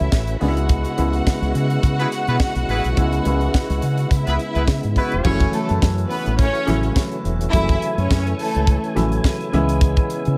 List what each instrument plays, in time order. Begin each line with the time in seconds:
Already playing: grand piano C#3 F#3 A3 E4, tonewheel organ E3 A3 C#4 F#4, string section E4 E5
0.00 fingered electric bass C#2
0.12 fingered electric bass A1, kick, snare
0.27 closed hi-hat
0.40 fingered electric bass C#2, grand piano C#3 G#3 B3 D4, tonewheel organ C#3 G#3 B3 E4, string section F#4 F#5, open hi-hat
0.48 grand piano E4
0.57 closed hi-hat
0.69 kick, closed hi-hat
0.85 closed hi-hat
0.97 fingered electric bass C#2, grand piano C#3 G#3 B3 E4, closed hi-hat
1.13 closed hi-hat
1.27 kick, snare
1.42 fingered electric bass C#2, closed hi-hat
1.55 fingered electric bass C#3, closed hi-hat
1.70 closed hi-hat
1.83 fingered electric bass C#3, kick, closed hi-hat
1.99 horn section B3 E4 G#4 B4, closed hi-hat
2.12 snare, closed hi-hat
2.27 fingered electric bass B2, horn section B3 E4 G#4 B4, closed hi-hat
2.40 kick, snare
2.55 fingered electric bass B1, closed hi-hat
2.68 fingered electric bass A1, horn section B3 E4 G#4 B4, open hi-hat
2.84 fingered electric bass B1, closed hi-hat
2.96 fingered electric bass C#2, grand piano C#3 G#3 B3 E4, kick, closed hi-hat
3.13 closed hi-hat
3.24 fingered electric bass C#2, grand piano C#3 G#3 B3 E4, closed hi-hat
3.41 closed hi-hat
3.54 kick, snare
3.70 fingered electric bass C#2, closed hi-hat
3.82 fingered electric bass C#3, closed hi-hat
3.97 closed hi-hat
4.10 fingered electric bass C#3, string section E4 E5, kick, closed hi-hat
4.26 fingered electric bass C#2, horn section B3 E4 G#4 B4, closed hi-hat
4.39 closed hi-hat
4.54 fingered electric bass C#2, horn section B3 E4 G#4 B4, closed hi-hat
4.68 fingered electric bass C#3, kick, snare
4.83 fingered electric bass G#2, closed hi-hat
4.96 horn section B3 E4 F#4 B4, kick, open hi-hat
5.12 fingered electric bass E1, closed hi-hat
5.24 fingered electric bass F#1, grand piano C#3 E3 F#3 G#3 E4, tonewheel organ E3 A3 C#4 F#4, string section C#4 C#5, kick, crash
5.32 grand piano A3
5.40 kick, closed hi-hat
5.53 string section A3 A4, closed hi-hat
5.69 fingered electric bass F#2, closed hi-hat
5.82 fingered electric bass F#2, kick, snare
5.98 closed hi-hat
6.09 string section B3 B4, open hi-hat
6.26 fingered electric bass A1, closed hi-hat
6.38 string section C#4 C#5, kick, closed hi-hat
6.55 closed hi-hat
6.66 fingered electric bass A1, grand piano C#3 E3 F#3 A3 E4, snare, closed hi-hat
6.83 closed hi-hat
6.96 kick, snare
7.12 closed hi-hat
7.25 fingered electric bass E1, closed hi-hat
7.41 closed hi-hat
7.51 fingered electric bass F#1, grand piano C#3 E3 F#3 A3 E4, string section E4 E5, tonewheel organ G#5, kick, closed hi-hat
7.69 kick, closed hi-hat
7.82 closed hi-hat
7.98 fingered electric bass F#2, string section C#4 C#5, closed hi-hat
8.11 fingered electric bass F#2, kick, snare
8.27 closed hi-hat
8.38 string section A3 A4, open hi-hat
8.55 fingered electric bass C#2, closed hi-hat
8.67 kick, closed hi-hat
8.84 closed hi-hat
8.95 fingered electric bass A1, grand piano C#3 E3 F#3 A3 E4, snare, closed hi-hat
9.12 closed hi-hat
9.24 kick, snare
9.41 closed hi-hat
9.52 fingered electric bass C#2, grand piano C#3 E3 G#3 B3 E4, tonewheel organ B3, closed hi-hat
9.69 closed hi-hat
9.81 kick, closed hi-hat
9.96 kick, closed hi-hat
10.10 closed hi-hat
10.25 fingered electric bass C#3, closed hi-hat